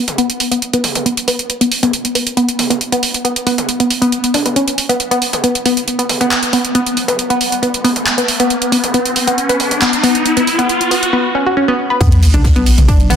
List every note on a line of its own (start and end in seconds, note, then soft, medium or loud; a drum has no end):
0.08 closed hi-hat medium
0.08 mid tom medium
0.18 0.27 B3 loud
0.18 closed hi-hat medium
0.30 closed hi-hat medium
0.40 open hi-hat loud
0.51 0.57 B3 medium
0.51 closed hi-hat medium
0.62 closed hi-hat medium
0.73 0.81 B3 loud
0.73 closed hi-hat medium
0.84 open hi-hat loud
0.84 mid tom medium
0.95 closed hi-hat medium
0.95 mid tom medium
1.06 1.11 B3 medium
1.06 closed hi-hat medium
1.17 closed hi-hat medium
1.28 1.36 B3 loud
1.28 open hi-hat loud
1.39 closed hi-hat medium
1.50 closed hi-hat medium
1.61 1.66 B3 medium
1.61 closed hi-hat medium
1.72 open hi-hat loud
1.83 1.91 B3 loud
1.83 closed hi-hat medium
1.83 mid tom medium
1.93 closed hi-hat medium
2.05 closed hi-hat medium
2.15 2.21 B3 medium
2.15 open hi-hat loud
2.27 closed hi-hat medium
2.37 2.46 B3 loud
2.37 closed hi-hat medium
2.49 closed hi-hat medium
2.59 open hi-hat loud
2.59 mid tom medium
2.70 2.76 B3 medium
2.70 closed hi-hat medium
2.70 mid tom medium
2.81 closed hi-hat medium
2.92 3.00 B3 loud
2.92 closed hi-hat medium
3.03 open hi-hat loud
3.14 closed hi-hat medium
3.25 3.30 B3 medium
3.25 closed hi-hat medium
3.36 closed hi-hat medium
3.47 3.55 B3 loud
3.47 open hi-hat loud
3.58 closed hi-hat medium
3.58 mid tom medium
3.69 closed hi-hat medium
3.80 3.85 B3 medium
3.80 closed hi-hat medium
3.90 open hi-hat loud
4.02 4.10 B3 loud
4.02 closed hi-hat medium
4.12 closed hi-hat medium
4.24 closed hi-hat medium
4.34 4.38 D4 medium
4.34 open hi-hat loud
4.34 mid tom medium
4.46 4.49 B3 medium
4.46 closed hi-hat medium
4.46 mid tom medium
4.56 4.65 C#4 medium
4.56 closed hi-hat medium
4.68 closed hi-hat medium
4.78 open hi-hat loud
4.89 4.95 B3 loud
4.89 closed hi-hat medium
5.00 closed hi-hat medium
5.00 riser medium
5.11 5.19 B3 loud
5.11 closed hi-hat medium
5.22 open hi-hat loud
5.33 closed hi-hat medium
5.33 mid tom loud
5.44 5.49 B3 medium
5.44 closed hi-hat medium
5.55 closed hi-hat medium
5.66 5.74 B3 loud
5.66 open hi-hat loud
5.77 closed hi-hat medium
5.88 closed hi-hat medium
5.99 6.04 B3 medium
5.99 closed hi-hat medium
6.09 open hi-hat loud
6.09 mid tom loud
6.21 6.29 B3 loud
6.21 closed hi-hat medium
6.21 mid tom medium
6.31 clap loud
6.31 closed hi-hat medium
6.43 closed hi-hat medium
6.53 6.59 B3 medium
6.53 open hi-hat loud
6.65 closed hi-hat medium
6.75 6.84 B3 loud
6.75 closed hi-hat medium
6.86 closed hi-hat medium
6.97 open hi-hat loud
7.08 7.14 B3 medium
7.08 closed hi-hat medium
7.08 mid tom loud
7.19 closed hi-hat medium
7.30 7.38 B3 loud
7.30 closed hi-hat medium
7.41 open hi-hat loud
7.52 closed hi-hat medium
7.62 7.68 B3 medium
7.62 closed hi-hat medium
7.74 closed hi-hat medium
7.84 7.93 B3 loud
7.84 open hi-hat loud
7.84 mid tom loud
7.96 closed hi-hat medium
7.96 mid tom medium
8.07 clap loud
8.07 closed hi-hat medium
8.18 8.23 B3 medium
8.18 closed hi-hat medium
8.28 open hi-hat loud
8.40 8.48 B3 loud
8.40 closed hi-hat medium
8.50 closed hi-hat medium
8.62 closed hi-hat medium
8.72 8.78 B3 medium
8.72 open hi-hat loud
8.84 closed hi-hat medium
8.84 mid tom medium
8.94 9.03 B3 loud
8.94 closed hi-hat medium
9.05 closed hi-hat medium
9.16 open hi-hat loud
9.27 9.33 B3 medium
9.27 closed hi-hat medium
9.38 closed hi-hat medium
9.49 9.57 B3 loud
9.49 closed hi-hat medium
9.60 open hi-hat loud
9.60 mid tom medium
9.71 closed hi-hat medium
9.71 mid tom medium
9.82 9.87 B3 medium
9.82 clap loud
9.82 closed hi-hat medium
9.93 closed hi-hat medium
10.03 10.12 B3 loud
10.03 open hi-hat loud
10.15 closed hi-hat medium
10.26 closed hi-hat medium
10.37 10.42 B3 medium
10.37 closed hi-hat medium
10.47 open hi-hat loud
10.59 10.67 B3 loud
10.59 closed hi-hat medium
10.59 mid tom medium
10.69 closed hi-hat medium
10.81 closed hi-hat medium
10.91 10.97 B3 medium
10.91 open hi-hat loud
11.03 closed hi-hat medium
11.13 11.22 B3 loud
11.35 11.38 C#4 medium
11.46 11.52 F#4 medium
11.57 11.63 C#4 medium
11.68 11.76 B3 loud
11.90 11.95 B4 medium
12.01 12.04 B3 medium
12.01 kick loud
12.01 closed hi-hat medium
12.01 closed hi-hat loud
12.01 ride medium
12.01 sub drop medium
12.12 12.22 B1 medium
12.12 closed hi-hat medium
12.12 ride medium
12.23 closed hi-hat medium
12.23 open hi-hat loud
12.23 ride medium
12.34 12.44 B1 medium
12.34 12.39 D4 medium
12.34 closed hi-hat medium
12.34 mid tom medium
12.34 ride medium
12.44 kick loud
12.44 snare loud
12.44 closed hi-hat medium
12.44 ride medium
12.56 12.66 B1 medium
12.56 12.59 B3 medium
12.56 closed hi-hat medium
12.56 ride medium
12.66 closed hi-hat medium
12.66 open hi-hat loud
12.66 ride medium
12.78 12.88 B1 medium
12.78 closed hi-hat medium
12.78 mid tom medium
12.78 ride medium
12.88 12.94 D4 medium
12.88 kick loud
12.88 closed hi-hat medium
12.88 ride medium
13.00 13.10 B1 medium
13.00 closed hi-hat medium
13.00 ride medium
13.10 13.14 B3 medium
13.10 closed hi-hat medium
13.10 open hi-hat loud
13.10 mid tom medium
13.10 ride medium